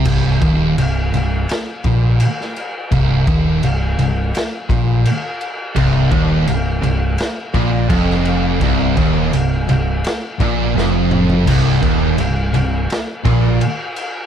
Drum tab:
CC |x-x-x-x-x-x-x-x-|x-x-x-x-x-x-x-x-|x-x-x-x-x-x-x-x-|x-x-x-x-x-x-----|
SD |--------o----o--|--------o-------|--------o----o--|--------o---o---|
T2 |----------------|----------------|----------------|--------------o-|
FT |----------------|----------------|----------------|---------------o|
BD |o-o-------o-----|o-o-------o-----|o-o-------o-o---|o-o-------o-----|

CC |x-x-x-x-x-x-x-x-|
SD |--------o-------|
T2 |----------------|
FT |----------------|
BD |o-o-------o-----|